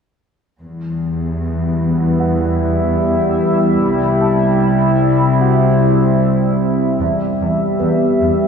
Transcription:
0.59 3.76 E2 soft
0.59 6.96 G3 medium
0.59 3.76 B3 medium
0.59 6.96 E4 medium
0.59 6.96 E5 medium
2.20 4.56 F#5 soft
3.80 6.81 C2 soft
3.80 7.00 C4 medium
4.21 6.57 A5 soft
5.40 6.96 F#4 soft
5.40 6.97 F#5 soft
7.00 7.08 E2 soft
7.00 8.48 G3 medium
7.00 8.48 B3 medium
7.00 8.48 G4 medium
7.00 8.48 E5 medium
7.41 7.49 E2 soft
7.80 7.88 E2 soft
7.80 8.48 B3 soft
7.80 8.48 B4 soft
8.20 8.28 E2 soft

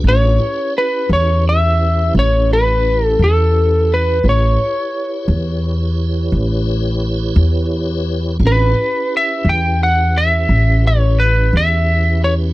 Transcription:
0.04 0.37 A1 medium
0.04 0.40 D4 soft
0.04 0.41 F4 soft
0.04 0.41 G#4 soft
0.04 0.39 B4 soft
0.08 0.73 C#5 medium
0.39 4.19 C#4 medium
0.39 4.19 E4 medium
0.39 4.19 G4 medium
0.39 4.19 B4 medium
0.78 1.09 B4 medium
1.09 2.10 E2 medium
1.09 1.44 C#5 medium
1.49 2.13 E5 medium
2.14 3.15 A1 medium
2.19 2.53 C#5 medium
2.53 3.05 B4 medium
3.05 3.23 A4 medium
3.19 4.20 E2 medium
3.24 3.93 A4 medium
3.94 4.27 B4 medium
4.23 4.56 A1 medium
4.23 8.37 E4 medium
4.23 8.37 G4 medium
4.23 8.38 B4 medium
4.23 8.37 C#5 medium
4.29 6.31 C#5 medium
5.28 6.28 E2 medium
6.32 7.32 A1 medium
7.36 8.37 E2 medium
8.39 8.72 A1 medium
8.39 8.75 C4 medium
8.39 8.75 D4 medium
8.39 8.75 F4 medium
8.39 8.76 G#4 medium
8.47 9.15 B4 medium
8.74 12.53 C#4 medium
8.74 12.53 E4 medium
8.74 12.53 G4 medium
8.74 12.53 B4 medium
9.17 9.49 E5 medium
9.45 10.45 E2 medium
9.49 9.83 G5 medium
9.83 10.17 F#5 medium
10.18 10.87 E5 medium
10.49 11.49 A1 medium
10.87 11.18 C#5 medium
11.20 11.55 B4 medium
11.53 12.53 E2 medium
11.53 12.21 E5 medium
12.24 12.34 C#5 medium

